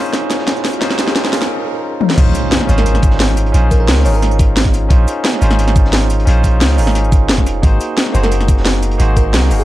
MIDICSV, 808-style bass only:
0, 0, Header, 1, 2, 480
1, 0, Start_track
1, 0, Key_signature, -5, "minor"
1, 0, Tempo, 340909
1, 1148, Time_signature, 4, 2, 24, 8
1, 13573, End_track
2, 0, Start_track
2, 0, Title_t, "808-style bass"
2, 0, Program_c, 0, 38
2, 0, Note_on_c, 0, 32, 106
2, 1129, Note_off_c, 0, 32, 0
2, 1144, Note_on_c, 0, 34, 101
2, 1625, Note_on_c, 0, 37, 97
2, 1646, Note_off_c, 0, 34, 0
2, 1867, Note_on_c, 0, 32, 106
2, 1888, Note_off_c, 0, 37, 0
2, 2107, Note_off_c, 0, 32, 0
2, 3066, Note_on_c, 0, 34, 101
2, 3284, Note_off_c, 0, 34, 0
2, 3787, Note_on_c, 0, 32, 100
2, 4969, Note_off_c, 0, 32, 0
2, 4987, Note_on_c, 0, 34, 96
2, 5468, Note_on_c, 0, 37, 94
2, 5490, Note_off_c, 0, 34, 0
2, 5710, Note_on_c, 0, 32, 107
2, 5731, Note_off_c, 0, 37, 0
2, 6890, Note_off_c, 0, 32, 0
2, 6908, Note_on_c, 0, 34, 107
2, 7124, Note_off_c, 0, 34, 0
2, 7628, Note_on_c, 0, 32, 103
2, 8809, Note_off_c, 0, 32, 0
2, 8829, Note_on_c, 0, 34, 103
2, 9307, Note_on_c, 0, 37, 89
2, 9328, Note_off_c, 0, 34, 0
2, 9550, Note_on_c, 0, 32, 104
2, 9571, Note_off_c, 0, 37, 0
2, 10269, Note_on_c, 0, 29, 87
2, 10290, Note_off_c, 0, 32, 0
2, 10730, Note_off_c, 0, 29, 0
2, 10748, Note_on_c, 0, 32, 99
2, 10965, Note_off_c, 0, 32, 0
2, 11469, Note_on_c, 0, 30, 104
2, 12650, Note_off_c, 0, 30, 0
2, 12669, Note_on_c, 0, 32, 98
2, 13148, Note_on_c, 0, 36, 96
2, 13169, Note_off_c, 0, 32, 0
2, 13389, Note_on_c, 0, 30, 105
2, 13410, Note_off_c, 0, 36, 0
2, 13573, Note_off_c, 0, 30, 0
2, 13573, End_track
0, 0, End_of_file